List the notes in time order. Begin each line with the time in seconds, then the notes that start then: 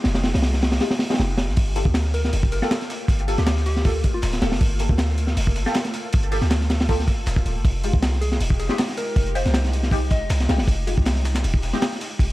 Already playing: G#3 D#4 F4 G4
0.04 F1, snare, open hi-hat
0.15 snare, open hi-hat
0.23 snare, open hi-hat
0.34 C2, snare, open hi-hat
0.42 snare, open hi-hat
0.54 snare
0.62 snare, open hi-hat
0.72 snare, open hi-hat
0.80 G#3 D#4 F4 G4, snare, open hi-hat
0.91 snare, open hi-hat
0.99 snare, open hi-hat
1.10 G#3 D#4 F4 G4, snare, open hi-hat
1.14 snare, open hi-hat
1.18 F1, snare, open hi-hat
1.29 snare
1.38 snare, open hi-hat
1.49 A#1, snare
1.57 G1 A3 A#3 F4 G4, kick, closed hi-hat, open hi-hat
1.76 A#3 F4 G4 A4, closed hi-hat, open hi-hat
1.85 D2, kick
1.94 snare, closed hi-hat, open hi-hat
2.05 snare
2.14 A#4, closed hi-hat, open hi-hat
2.24 A#4, snare
2.33 F1, closed hi-hat, open hi-hat
2.43 kick
2.52 G1 A#4, snare, closed hi-hat, open hi-hat
2.62 A#3 F4 G4 A4 A#4, snare
2.71 snare, closed hi-hat, open hi-hat
2.81 snare, closed hi-hat
2.90 snare, closed hi-hat, open hi-hat
3.08 G1, kick, closed hi-hat, open hi-hat
3.18 closed hi-hat
3.28 A#3 F4 G4 A4, closed hi-hat, open hi-hat
3.38 D2 G4, snare
3.47 snare, closed hi-hat, open hi-hat
3.57 snare
3.66 G4, closed hi-hat, open hi-hat
3.76 snare
3.85 A#3 F4 G4 A4, kick, open hi-hat
4.04 G1, kick, closed hi-hat, open hi-hat
4.14 F4
4.22 D1 F4, snare, closed hi-hat, open hi-hat
4.33 snare
4.42 D1 A#3 F4 G4 A4, snare, closed hi-hat, open hi-hat
4.52 G1, snare, open hi-hat
4.61 G1 A4, kick, closed hi-hat, open hi-hat
4.79 A#3 F4 G4 A4, closed hi-hat, open hi-hat
4.89 D2, kick
4.98 snare, closed hi-hat, open hi-hat
5.09 snare
5.18 closed hi-hat, open hi-hat
5.27 snare
5.37 F1, closed hi-hat, open hi-hat
5.47 kick
5.56 G1, snare, closed hi-hat, open hi-hat
5.66 A#3 F4 G4 A4, snare
5.74 snare, closed hi-hat, open hi-hat
5.85 snare, closed hi-hat
5.94 snare, closed hi-hat, open hi-hat
6.12 G1, kick, closed hi-hat, open hi-hat
6.23 closed hi-hat
6.32 A#3 F4 G4 A4, closed hi-hat, open hi-hat
6.41 D2, snare
6.51 snare, closed hi-hat, open hi-hat
6.61 snare
6.70 snare, closed hi-hat, open hi-hat
6.80 snare, open hi-hat
6.89 A#3 F4 G4 A4, kick, open hi-hat
7.00 snare
7.08 G1, kick, closed hi-hat, open hi-hat
7.26 D1, snare, closed hi-hat, open hi-hat
7.36 kick, snare
7.46 D1, closed hi-hat, open hi-hat
7.56 G1
7.65 F1 G#3 D#4 G4, kick, closed hi-hat, open hi-hat
7.84 G#3 D#4 F4 G4, closed hi-hat, open hi-hat
7.93 C2, kick
8.02 snare, closed hi-hat, open hi-hat
8.13 snare
8.21 G#4, closed hi-hat, open hi-hat
8.32 G#4, snare
8.40 D#1, closed hi-hat, open hi-hat
8.50 kick
8.59 F1 G#4, snare, closed hi-hat, open hi-hat
8.69 G#3 D#4 F4 G4 G#4, snare
8.78 snare, closed hi-hat, open hi-hat
8.89 snare, closed hi-hat
8.97 A#4, snare, closed hi-hat, open hi-hat
9.16 F1, kick, closed hi-hat, open hi-hat
9.27 closed hi-hat
9.35 G#3 D#4 F4 G4 C5, closed hi-hat, open hi-hat
9.46 C2, snare
9.54 snare, closed hi-hat, open hi-hat
9.64 snare
9.73 closed hi-hat, open hi-hat
9.83 snare
9.91 G#3 D#4 F4 G4, kick, open hi-hat
10.10 F1 D#5, kick, closed hi-hat, open hi-hat
10.30 C2, snare, closed hi-hat, open hi-hat
10.40 snare
10.49 C2 G#3 D#4 F4 G4, snare, closed hi-hat, open hi-hat
10.58 F1, snare, open hi-hat
10.68 F1, kick, closed hi-hat, open hi-hat
10.87 G#3 D#4 F4 G4, closed hi-hat, open hi-hat
10.98 C2, kick
11.05 snare, closed hi-hat, open hi-hat
11.16 snare
11.25 snare, closed hi-hat, open hi-hat
11.35 snare, closed hi-hat
11.44 D#1, closed hi-hat, open hi-hat
11.54 kick
11.62 F1, snare, closed hi-hat, open hi-hat
11.73 G#3 D#4 F4 G4, snare
11.82 snare, closed hi-hat, open hi-hat
11.92 snare, closed hi-hat
12.01 snare, closed hi-hat, open hi-hat
12.19 F1, kick, closed hi-hat, open hi-hat